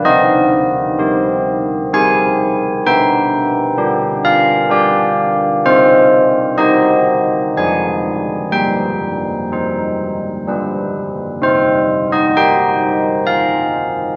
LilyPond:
\new Staff \with { instrumentName = "Church bells" } { \time 3/4 \key c \minor \tempo 4 = 64 << { ees''2 aes''4 | g''4. f''8 d''4 | c''4 ees''4 aes''4 | g''2~ g''8 r8 |
c''8. ees''16 g''4 f''4 | } \\ { c'4 <c' g'>4 <c' g'>4 | b4 <d' g'>4 <d' g'>4 | c'4 <ees' g'>4 <f d' aes'>4 | g4 <ees' c''>4 <g d' b'>4 |
c'4 <ees' g'>2 | } >> }